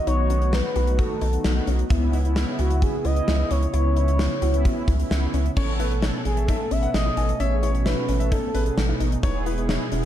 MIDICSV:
0, 0, Header, 1, 8, 480
1, 0, Start_track
1, 0, Tempo, 458015
1, 75, Time_signature, 4, 2, 24, 8
1, 10533, End_track
2, 0, Start_track
2, 0, Title_t, "Grand piano"
2, 0, Program_c, 0, 0
2, 5836, Note_on_c, 0, 73, 106
2, 5974, Note_off_c, 0, 73, 0
2, 6074, Note_on_c, 0, 71, 85
2, 6213, Note_off_c, 0, 71, 0
2, 6314, Note_on_c, 0, 73, 71
2, 6384, Note_off_c, 0, 73, 0
2, 6675, Note_on_c, 0, 76, 69
2, 6744, Note_off_c, 0, 76, 0
2, 6792, Note_on_c, 0, 76, 89
2, 6862, Note_off_c, 0, 76, 0
2, 7152, Note_on_c, 0, 78, 77
2, 7223, Note_off_c, 0, 78, 0
2, 7513, Note_on_c, 0, 80, 75
2, 7583, Note_off_c, 0, 80, 0
2, 7756, Note_on_c, 0, 76, 101
2, 7894, Note_off_c, 0, 76, 0
2, 7993, Note_on_c, 0, 73, 76
2, 8132, Note_off_c, 0, 73, 0
2, 8234, Note_on_c, 0, 76, 79
2, 8304, Note_off_c, 0, 76, 0
2, 8593, Note_on_c, 0, 76, 77
2, 8732, Note_off_c, 0, 76, 0
2, 8954, Note_on_c, 0, 71, 83
2, 9024, Note_off_c, 0, 71, 0
2, 9675, Note_on_c, 0, 73, 111
2, 9814, Note_off_c, 0, 73, 0
2, 9916, Note_on_c, 0, 71, 85
2, 10055, Note_off_c, 0, 71, 0
2, 10155, Note_on_c, 0, 73, 70
2, 10224, Note_off_c, 0, 73, 0
2, 10533, End_track
3, 0, Start_track
3, 0, Title_t, "Analog synth lead"
3, 0, Program_c, 1, 81
3, 75, Note_on_c, 1, 73, 108
3, 556, Note_on_c, 1, 71, 99
3, 572, Note_off_c, 1, 73, 0
3, 1035, Note_on_c, 1, 69, 88
3, 1051, Note_off_c, 1, 71, 0
3, 1755, Note_off_c, 1, 69, 0
3, 2714, Note_on_c, 1, 66, 93
3, 2953, Note_on_c, 1, 68, 104
3, 2968, Note_off_c, 1, 66, 0
3, 3193, Note_on_c, 1, 75, 126
3, 3209, Note_off_c, 1, 68, 0
3, 3674, Note_on_c, 1, 73, 116
3, 3689, Note_off_c, 1, 75, 0
3, 5355, Note_off_c, 1, 73, 0
3, 6552, Note_on_c, 1, 68, 95
3, 6792, Note_on_c, 1, 69, 102
3, 6808, Note_off_c, 1, 68, 0
3, 7032, Note_on_c, 1, 76, 112
3, 7048, Note_off_c, 1, 69, 0
3, 7263, Note_off_c, 1, 76, 0
3, 7269, Note_on_c, 1, 75, 106
3, 7750, Note_on_c, 1, 73, 110
3, 7765, Note_off_c, 1, 75, 0
3, 8232, Note_on_c, 1, 71, 98
3, 8248, Note_off_c, 1, 73, 0
3, 8708, Note_off_c, 1, 71, 0
3, 8714, Note_on_c, 1, 69, 89
3, 9393, Note_off_c, 1, 69, 0
3, 10533, End_track
4, 0, Start_track
4, 0, Title_t, "Synth arpeggio sound"
4, 0, Program_c, 2, 84
4, 75, Note_on_c, 2, 63, 99
4, 233, Note_off_c, 2, 63, 0
4, 317, Note_on_c, 2, 61, 82
4, 473, Note_off_c, 2, 61, 0
4, 556, Note_on_c, 2, 63, 87
4, 713, Note_off_c, 2, 63, 0
4, 796, Note_on_c, 2, 66, 81
4, 953, Note_off_c, 2, 66, 0
4, 1036, Note_on_c, 2, 66, 93
4, 1193, Note_off_c, 2, 66, 0
4, 1275, Note_on_c, 2, 63, 82
4, 1433, Note_off_c, 2, 63, 0
4, 1516, Note_on_c, 2, 63, 84
4, 1673, Note_off_c, 2, 63, 0
4, 1755, Note_on_c, 2, 61, 86
4, 1913, Note_off_c, 2, 61, 0
4, 1995, Note_on_c, 2, 64, 100
4, 2153, Note_off_c, 2, 64, 0
4, 2235, Note_on_c, 2, 63, 82
4, 2393, Note_off_c, 2, 63, 0
4, 2475, Note_on_c, 2, 64, 87
4, 2633, Note_off_c, 2, 64, 0
4, 2717, Note_on_c, 2, 66, 81
4, 2874, Note_off_c, 2, 66, 0
4, 2955, Note_on_c, 2, 66, 92
4, 3113, Note_off_c, 2, 66, 0
4, 3195, Note_on_c, 2, 64, 83
4, 3353, Note_off_c, 2, 64, 0
4, 3435, Note_on_c, 2, 64, 84
4, 3593, Note_off_c, 2, 64, 0
4, 3676, Note_on_c, 2, 61, 82
4, 3833, Note_off_c, 2, 61, 0
4, 3915, Note_on_c, 2, 64, 98
4, 4073, Note_off_c, 2, 64, 0
4, 4155, Note_on_c, 2, 63, 79
4, 4313, Note_off_c, 2, 63, 0
4, 4394, Note_on_c, 2, 64, 90
4, 4552, Note_off_c, 2, 64, 0
4, 4634, Note_on_c, 2, 66, 82
4, 4792, Note_off_c, 2, 66, 0
4, 4873, Note_on_c, 2, 66, 92
4, 5031, Note_off_c, 2, 66, 0
4, 5113, Note_on_c, 2, 64, 85
4, 5271, Note_off_c, 2, 64, 0
4, 5353, Note_on_c, 2, 64, 85
4, 5511, Note_off_c, 2, 64, 0
4, 5594, Note_on_c, 2, 61, 80
4, 5752, Note_off_c, 2, 61, 0
4, 5834, Note_on_c, 2, 61, 99
4, 5992, Note_off_c, 2, 61, 0
4, 6074, Note_on_c, 2, 64, 80
4, 6232, Note_off_c, 2, 64, 0
4, 6313, Note_on_c, 2, 63, 84
4, 6471, Note_off_c, 2, 63, 0
4, 6555, Note_on_c, 2, 61, 78
4, 6713, Note_off_c, 2, 61, 0
4, 6796, Note_on_c, 2, 63, 92
4, 6953, Note_off_c, 2, 63, 0
4, 7034, Note_on_c, 2, 61, 83
4, 7192, Note_off_c, 2, 61, 0
4, 7395, Note_on_c, 2, 64, 72
4, 7474, Note_off_c, 2, 64, 0
4, 7515, Note_on_c, 2, 63, 81
4, 7672, Note_off_c, 2, 63, 0
4, 7756, Note_on_c, 2, 61, 98
4, 7913, Note_off_c, 2, 61, 0
4, 7996, Note_on_c, 2, 64, 79
4, 8153, Note_off_c, 2, 64, 0
4, 8236, Note_on_c, 2, 63, 87
4, 8393, Note_off_c, 2, 63, 0
4, 8476, Note_on_c, 2, 61, 82
4, 8633, Note_off_c, 2, 61, 0
4, 8717, Note_on_c, 2, 63, 93
4, 8874, Note_off_c, 2, 63, 0
4, 8957, Note_on_c, 2, 61, 83
4, 9114, Note_off_c, 2, 61, 0
4, 9316, Note_on_c, 2, 64, 73
4, 9395, Note_off_c, 2, 64, 0
4, 9436, Note_on_c, 2, 63, 79
4, 9593, Note_off_c, 2, 63, 0
4, 9677, Note_on_c, 2, 63, 101
4, 9833, Note_off_c, 2, 63, 0
4, 9917, Note_on_c, 2, 64, 80
4, 10074, Note_off_c, 2, 64, 0
4, 10157, Note_on_c, 2, 63, 86
4, 10314, Note_off_c, 2, 63, 0
4, 10396, Note_on_c, 2, 61, 81
4, 10533, Note_off_c, 2, 61, 0
4, 10533, End_track
5, 0, Start_track
5, 0, Title_t, "Analog polysynth"
5, 0, Program_c, 3, 90
5, 76, Note_on_c, 3, 59, 83
5, 76, Note_on_c, 3, 63, 73
5, 76, Note_on_c, 3, 66, 87
5, 714, Note_off_c, 3, 59, 0
5, 714, Note_off_c, 3, 63, 0
5, 714, Note_off_c, 3, 66, 0
5, 796, Note_on_c, 3, 59, 81
5, 796, Note_on_c, 3, 63, 73
5, 796, Note_on_c, 3, 66, 88
5, 1327, Note_off_c, 3, 59, 0
5, 1327, Note_off_c, 3, 63, 0
5, 1327, Note_off_c, 3, 66, 0
5, 1397, Note_on_c, 3, 59, 78
5, 1397, Note_on_c, 3, 63, 73
5, 1397, Note_on_c, 3, 66, 85
5, 1928, Note_off_c, 3, 59, 0
5, 1928, Note_off_c, 3, 63, 0
5, 1928, Note_off_c, 3, 66, 0
5, 1996, Note_on_c, 3, 59, 99
5, 1997, Note_on_c, 3, 61, 86
5, 1997, Note_on_c, 3, 64, 103
5, 2315, Note_off_c, 3, 59, 0
5, 2315, Note_off_c, 3, 61, 0
5, 2315, Note_off_c, 3, 64, 0
5, 2357, Note_on_c, 3, 61, 83
5, 2357, Note_on_c, 3, 64, 99
5, 2358, Note_on_c, 3, 59, 88
5, 3100, Note_off_c, 3, 64, 0
5, 3101, Note_off_c, 3, 59, 0
5, 3101, Note_off_c, 3, 61, 0
5, 3197, Note_on_c, 3, 61, 70
5, 3198, Note_on_c, 3, 59, 82
5, 3198, Note_on_c, 3, 64, 91
5, 3834, Note_off_c, 3, 59, 0
5, 3834, Note_off_c, 3, 61, 0
5, 3834, Note_off_c, 3, 64, 0
5, 3917, Note_on_c, 3, 64, 89
5, 3918, Note_on_c, 3, 59, 80
5, 3918, Note_on_c, 3, 61, 74
5, 4554, Note_off_c, 3, 61, 0
5, 4554, Note_off_c, 3, 64, 0
5, 4555, Note_off_c, 3, 59, 0
5, 4637, Note_on_c, 3, 59, 96
5, 4637, Note_on_c, 3, 61, 85
5, 4637, Note_on_c, 3, 64, 107
5, 5168, Note_off_c, 3, 59, 0
5, 5168, Note_off_c, 3, 61, 0
5, 5168, Note_off_c, 3, 64, 0
5, 5235, Note_on_c, 3, 61, 82
5, 5235, Note_on_c, 3, 64, 99
5, 5236, Note_on_c, 3, 59, 91
5, 5767, Note_off_c, 3, 59, 0
5, 5767, Note_off_c, 3, 61, 0
5, 5767, Note_off_c, 3, 64, 0
5, 5835, Note_on_c, 3, 59, 94
5, 5835, Note_on_c, 3, 61, 84
5, 5835, Note_on_c, 3, 69, 101
5, 6154, Note_off_c, 3, 59, 0
5, 6154, Note_off_c, 3, 61, 0
5, 6154, Note_off_c, 3, 69, 0
5, 6196, Note_on_c, 3, 59, 90
5, 6196, Note_on_c, 3, 61, 82
5, 6196, Note_on_c, 3, 69, 98
5, 6515, Note_off_c, 3, 59, 0
5, 6515, Note_off_c, 3, 61, 0
5, 6515, Note_off_c, 3, 69, 0
5, 6557, Note_on_c, 3, 61, 73
5, 6557, Note_on_c, 3, 69, 87
5, 6558, Note_on_c, 3, 59, 79
5, 6982, Note_off_c, 3, 59, 0
5, 6982, Note_off_c, 3, 61, 0
5, 6982, Note_off_c, 3, 69, 0
5, 7036, Note_on_c, 3, 59, 79
5, 7036, Note_on_c, 3, 61, 73
5, 7036, Note_on_c, 3, 71, 90
5, 7248, Note_off_c, 3, 59, 0
5, 7248, Note_off_c, 3, 61, 0
5, 7249, Note_off_c, 3, 71, 0
5, 7277, Note_on_c, 3, 59, 76
5, 7277, Note_on_c, 3, 61, 72
5, 7277, Note_on_c, 3, 69, 86
5, 7702, Note_off_c, 3, 59, 0
5, 7702, Note_off_c, 3, 61, 0
5, 7702, Note_off_c, 3, 69, 0
5, 7757, Note_on_c, 3, 61, 71
5, 7758, Note_on_c, 3, 59, 78
5, 7758, Note_on_c, 3, 68, 89
5, 8075, Note_off_c, 3, 59, 0
5, 8075, Note_off_c, 3, 61, 0
5, 8076, Note_off_c, 3, 68, 0
5, 8116, Note_on_c, 3, 59, 71
5, 8116, Note_on_c, 3, 61, 66
5, 8116, Note_on_c, 3, 66, 83
5, 8435, Note_off_c, 3, 59, 0
5, 8435, Note_off_c, 3, 61, 0
5, 8435, Note_off_c, 3, 66, 0
5, 8478, Note_on_c, 3, 59, 79
5, 8478, Note_on_c, 3, 61, 74
5, 8478, Note_on_c, 3, 69, 86
5, 8902, Note_off_c, 3, 59, 0
5, 8902, Note_off_c, 3, 61, 0
5, 8902, Note_off_c, 3, 69, 0
5, 8956, Note_on_c, 3, 59, 77
5, 8956, Note_on_c, 3, 61, 71
5, 8956, Note_on_c, 3, 68, 86
5, 9169, Note_off_c, 3, 59, 0
5, 9169, Note_off_c, 3, 61, 0
5, 9169, Note_off_c, 3, 68, 0
5, 9196, Note_on_c, 3, 59, 77
5, 9197, Note_on_c, 3, 61, 68
5, 9197, Note_on_c, 3, 63, 86
5, 9621, Note_off_c, 3, 59, 0
5, 9621, Note_off_c, 3, 61, 0
5, 9621, Note_off_c, 3, 63, 0
5, 9677, Note_on_c, 3, 68, 102
5, 9678, Note_on_c, 3, 59, 96
5, 9678, Note_on_c, 3, 64, 85
5, 9995, Note_off_c, 3, 68, 0
5, 9996, Note_off_c, 3, 59, 0
5, 9996, Note_off_c, 3, 64, 0
5, 10036, Note_on_c, 3, 59, 88
5, 10036, Note_on_c, 3, 64, 80
5, 10036, Note_on_c, 3, 68, 96
5, 10355, Note_off_c, 3, 59, 0
5, 10355, Note_off_c, 3, 64, 0
5, 10355, Note_off_c, 3, 68, 0
5, 10396, Note_on_c, 3, 64, 89
5, 10396, Note_on_c, 3, 68, 103
5, 10397, Note_on_c, 3, 59, 95
5, 10533, Note_off_c, 3, 59, 0
5, 10533, Note_off_c, 3, 64, 0
5, 10533, Note_off_c, 3, 68, 0
5, 10533, End_track
6, 0, Start_track
6, 0, Title_t, "Analog synth pad"
6, 0, Program_c, 4, 89
6, 0, Note_on_c, 4, 51, 83
6, 0, Note_on_c, 4, 66, 92
6, 77, Note_on_c, 4, 57, 73
6, 1957, Note_off_c, 4, 51, 0
6, 1957, Note_off_c, 4, 66, 0
6, 1977, Note_off_c, 4, 57, 0
6, 1995, Note_on_c, 4, 49, 78
6, 1996, Note_on_c, 4, 59, 75
6, 1996, Note_on_c, 4, 64, 90
6, 3897, Note_off_c, 4, 59, 0
6, 3916, Note_on_c, 4, 61, 77
6, 5797, Note_off_c, 4, 49, 0
6, 5797, Note_off_c, 4, 64, 0
6, 5817, Note_off_c, 4, 61, 0
6, 5835, Note_on_c, 4, 57, 72
6, 5836, Note_on_c, 4, 47, 81
6, 5836, Note_on_c, 4, 61, 91
6, 9637, Note_off_c, 4, 57, 0
6, 9637, Note_off_c, 4, 61, 0
6, 9676, Note_on_c, 4, 56, 77
6, 9676, Note_on_c, 4, 64, 85
6, 10533, Note_off_c, 4, 47, 0
6, 10533, Note_off_c, 4, 56, 0
6, 10533, Note_off_c, 4, 64, 0
6, 10533, End_track
7, 0, Start_track
7, 0, Title_t, "Analog synth bass"
7, 0, Program_c, 5, 38
7, 75, Note_on_c, 5, 35, 108
7, 645, Note_off_c, 5, 35, 0
7, 795, Note_on_c, 5, 35, 104
7, 1047, Note_off_c, 5, 35, 0
7, 1275, Note_on_c, 5, 35, 102
7, 1443, Note_off_c, 5, 35, 0
7, 1515, Note_on_c, 5, 35, 101
7, 1683, Note_off_c, 5, 35, 0
7, 1755, Note_on_c, 5, 35, 102
7, 1923, Note_off_c, 5, 35, 0
7, 1996, Note_on_c, 5, 37, 104
7, 2566, Note_off_c, 5, 37, 0
7, 2716, Note_on_c, 5, 37, 113
7, 2968, Note_off_c, 5, 37, 0
7, 3196, Note_on_c, 5, 37, 98
7, 3364, Note_off_c, 5, 37, 0
7, 3437, Note_on_c, 5, 37, 109
7, 3605, Note_off_c, 5, 37, 0
7, 3677, Note_on_c, 5, 37, 101
7, 3845, Note_off_c, 5, 37, 0
7, 3916, Note_on_c, 5, 37, 118
7, 4486, Note_off_c, 5, 37, 0
7, 4634, Note_on_c, 5, 37, 94
7, 4887, Note_off_c, 5, 37, 0
7, 5112, Note_on_c, 5, 37, 101
7, 5281, Note_off_c, 5, 37, 0
7, 5355, Note_on_c, 5, 37, 103
7, 5523, Note_off_c, 5, 37, 0
7, 5595, Note_on_c, 5, 37, 100
7, 5763, Note_off_c, 5, 37, 0
7, 5835, Note_on_c, 5, 33, 102
7, 6405, Note_off_c, 5, 33, 0
7, 6554, Note_on_c, 5, 33, 101
7, 6807, Note_off_c, 5, 33, 0
7, 7034, Note_on_c, 5, 33, 97
7, 7203, Note_off_c, 5, 33, 0
7, 7274, Note_on_c, 5, 33, 97
7, 7443, Note_off_c, 5, 33, 0
7, 7515, Note_on_c, 5, 33, 90
7, 7683, Note_off_c, 5, 33, 0
7, 7755, Note_on_c, 5, 33, 97
7, 8325, Note_off_c, 5, 33, 0
7, 8475, Note_on_c, 5, 33, 102
7, 8728, Note_off_c, 5, 33, 0
7, 8955, Note_on_c, 5, 33, 100
7, 9123, Note_off_c, 5, 33, 0
7, 9195, Note_on_c, 5, 33, 108
7, 9363, Note_off_c, 5, 33, 0
7, 9436, Note_on_c, 5, 33, 101
7, 9604, Note_off_c, 5, 33, 0
7, 9676, Note_on_c, 5, 28, 108
7, 10246, Note_off_c, 5, 28, 0
7, 10396, Note_on_c, 5, 28, 108
7, 10533, Note_off_c, 5, 28, 0
7, 10533, End_track
8, 0, Start_track
8, 0, Title_t, "Drums"
8, 75, Note_on_c, 9, 42, 85
8, 180, Note_off_c, 9, 42, 0
8, 314, Note_on_c, 9, 42, 66
8, 419, Note_off_c, 9, 42, 0
8, 437, Note_on_c, 9, 42, 45
8, 542, Note_off_c, 9, 42, 0
8, 555, Note_on_c, 9, 38, 112
8, 659, Note_off_c, 9, 38, 0
8, 793, Note_on_c, 9, 42, 76
8, 898, Note_off_c, 9, 42, 0
8, 916, Note_on_c, 9, 42, 60
8, 1021, Note_off_c, 9, 42, 0
8, 1034, Note_on_c, 9, 42, 70
8, 1036, Note_on_c, 9, 36, 93
8, 1139, Note_off_c, 9, 42, 0
8, 1141, Note_off_c, 9, 36, 0
8, 1273, Note_on_c, 9, 42, 77
8, 1378, Note_off_c, 9, 42, 0
8, 1394, Note_on_c, 9, 42, 54
8, 1499, Note_off_c, 9, 42, 0
8, 1514, Note_on_c, 9, 38, 117
8, 1619, Note_off_c, 9, 38, 0
8, 1754, Note_on_c, 9, 42, 77
8, 1858, Note_off_c, 9, 42, 0
8, 1877, Note_on_c, 9, 42, 54
8, 1982, Note_off_c, 9, 42, 0
8, 1995, Note_on_c, 9, 36, 108
8, 1995, Note_on_c, 9, 42, 85
8, 2100, Note_off_c, 9, 36, 0
8, 2100, Note_off_c, 9, 42, 0
8, 2235, Note_on_c, 9, 42, 67
8, 2340, Note_off_c, 9, 42, 0
8, 2357, Note_on_c, 9, 42, 43
8, 2462, Note_off_c, 9, 42, 0
8, 2473, Note_on_c, 9, 38, 112
8, 2578, Note_off_c, 9, 38, 0
8, 2712, Note_on_c, 9, 42, 77
8, 2817, Note_off_c, 9, 42, 0
8, 2835, Note_on_c, 9, 42, 61
8, 2940, Note_off_c, 9, 42, 0
8, 2955, Note_on_c, 9, 42, 69
8, 2956, Note_on_c, 9, 36, 94
8, 3060, Note_off_c, 9, 42, 0
8, 3061, Note_off_c, 9, 36, 0
8, 3193, Note_on_c, 9, 42, 76
8, 3298, Note_off_c, 9, 42, 0
8, 3315, Note_on_c, 9, 42, 54
8, 3420, Note_off_c, 9, 42, 0
8, 3436, Note_on_c, 9, 38, 126
8, 3541, Note_off_c, 9, 38, 0
8, 3675, Note_on_c, 9, 42, 79
8, 3779, Note_off_c, 9, 42, 0
8, 3799, Note_on_c, 9, 42, 54
8, 3904, Note_off_c, 9, 42, 0
8, 3916, Note_on_c, 9, 42, 85
8, 4020, Note_off_c, 9, 42, 0
8, 4155, Note_on_c, 9, 42, 66
8, 4260, Note_off_c, 9, 42, 0
8, 4277, Note_on_c, 9, 42, 47
8, 4382, Note_off_c, 9, 42, 0
8, 4394, Note_on_c, 9, 38, 107
8, 4498, Note_off_c, 9, 38, 0
8, 4632, Note_on_c, 9, 42, 78
8, 4737, Note_off_c, 9, 42, 0
8, 4756, Note_on_c, 9, 42, 58
8, 4861, Note_off_c, 9, 42, 0
8, 4875, Note_on_c, 9, 36, 96
8, 4875, Note_on_c, 9, 42, 69
8, 4980, Note_off_c, 9, 36, 0
8, 4980, Note_off_c, 9, 42, 0
8, 5112, Note_on_c, 9, 36, 91
8, 5114, Note_on_c, 9, 42, 76
8, 5217, Note_off_c, 9, 36, 0
8, 5219, Note_off_c, 9, 42, 0
8, 5234, Note_on_c, 9, 42, 55
8, 5339, Note_off_c, 9, 42, 0
8, 5356, Note_on_c, 9, 38, 125
8, 5460, Note_off_c, 9, 38, 0
8, 5595, Note_on_c, 9, 42, 77
8, 5700, Note_off_c, 9, 42, 0
8, 5719, Note_on_c, 9, 42, 55
8, 5824, Note_off_c, 9, 42, 0
8, 5834, Note_on_c, 9, 49, 100
8, 5835, Note_on_c, 9, 36, 110
8, 5939, Note_off_c, 9, 36, 0
8, 5939, Note_off_c, 9, 49, 0
8, 6075, Note_on_c, 9, 42, 66
8, 6180, Note_off_c, 9, 42, 0
8, 6197, Note_on_c, 9, 42, 43
8, 6302, Note_off_c, 9, 42, 0
8, 6314, Note_on_c, 9, 38, 111
8, 6418, Note_off_c, 9, 38, 0
8, 6553, Note_on_c, 9, 42, 76
8, 6657, Note_off_c, 9, 42, 0
8, 6676, Note_on_c, 9, 42, 57
8, 6781, Note_off_c, 9, 42, 0
8, 6796, Note_on_c, 9, 36, 93
8, 6796, Note_on_c, 9, 42, 67
8, 6901, Note_off_c, 9, 36, 0
8, 6901, Note_off_c, 9, 42, 0
8, 7034, Note_on_c, 9, 42, 73
8, 7139, Note_off_c, 9, 42, 0
8, 7155, Note_on_c, 9, 42, 53
8, 7260, Note_off_c, 9, 42, 0
8, 7276, Note_on_c, 9, 38, 119
8, 7381, Note_off_c, 9, 38, 0
8, 7515, Note_on_c, 9, 42, 78
8, 7620, Note_off_c, 9, 42, 0
8, 7639, Note_on_c, 9, 42, 55
8, 7744, Note_off_c, 9, 42, 0
8, 7755, Note_on_c, 9, 42, 86
8, 7860, Note_off_c, 9, 42, 0
8, 7996, Note_on_c, 9, 42, 66
8, 8100, Note_off_c, 9, 42, 0
8, 8118, Note_on_c, 9, 42, 44
8, 8223, Note_off_c, 9, 42, 0
8, 8235, Note_on_c, 9, 38, 108
8, 8340, Note_off_c, 9, 38, 0
8, 8474, Note_on_c, 9, 42, 76
8, 8579, Note_off_c, 9, 42, 0
8, 8597, Note_on_c, 9, 42, 59
8, 8702, Note_off_c, 9, 42, 0
8, 8717, Note_on_c, 9, 36, 94
8, 8719, Note_on_c, 9, 42, 67
8, 8822, Note_off_c, 9, 36, 0
8, 8823, Note_off_c, 9, 42, 0
8, 8956, Note_on_c, 9, 42, 74
8, 9060, Note_off_c, 9, 42, 0
8, 9076, Note_on_c, 9, 42, 53
8, 9181, Note_off_c, 9, 42, 0
8, 9197, Note_on_c, 9, 38, 120
8, 9302, Note_off_c, 9, 38, 0
8, 9436, Note_on_c, 9, 42, 73
8, 9541, Note_off_c, 9, 42, 0
8, 9560, Note_on_c, 9, 42, 54
8, 9665, Note_off_c, 9, 42, 0
8, 9676, Note_on_c, 9, 36, 108
8, 9677, Note_on_c, 9, 42, 82
8, 9781, Note_off_c, 9, 36, 0
8, 9782, Note_off_c, 9, 42, 0
8, 9917, Note_on_c, 9, 42, 67
8, 10022, Note_off_c, 9, 42, 0
8, 10038, Note_on_c, 9, 42, 46
8, 10143, Note_off_c, 9, 42, 0
8, 10155, Note_on_c, 9, 38, 108
8, 10259, Note_off_c, 9, 38, 0
8, 10393, Note_on_c, 9, 42, 75
8, 10498, Note_off_c, 9, 42, 0
8, 10533, End_track
0, 0, End_of_file